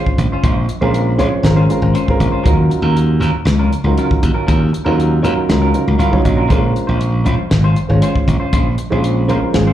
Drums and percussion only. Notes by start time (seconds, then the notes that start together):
0.06 kick
0.18 kick, closed hi-hat
0.44 kick, closed hi-hat
0.69 closed hi-hat
0.94 closed hi-hat
1.19 snare, closed hi-hat
1.44 snare, closed hi-hat
1.70 closed hi-hat
1.95 closed hi-hat
2.08 kick
2.20 kick, closed hi-hat
2.46 kick, closed hi-hat
2.71 closed hi-hat
2.97 closed hi-hat
3.22 snare, closed hi-hat
3.47 snare, closed hi-hat
3.73 closed hi-hat
3.98 closed hi-hat
4.11 kick
4.23 kick, closed hi-hat
4.48 kick, closed hi-hat
4.74 closed hi-hat
5.00 closed hi-hat
5.25 closed hi-hat
5.50 snare, closed hi-hat
5.74 closed hi-hat
6.00 closed hi-hat
6.13 kick
6.25 kick, closed hi-hat
6.50 kick, closed hi-hat
6.76 closed hi-hat
7.01 closed hi-hat
7.26 closed hi-hat
7.51 snare, closed hi-hat
7.76 closed hi-hat
8.02 closed hi-hat
8.15 kick
8.28 kick, closed hi-hat
8.53 kick, closed hi-hat
8.78 closed hi-hat
9.04 closed hi-hat
9.29 closed hi-hat
9.54 snare, closed hi-hat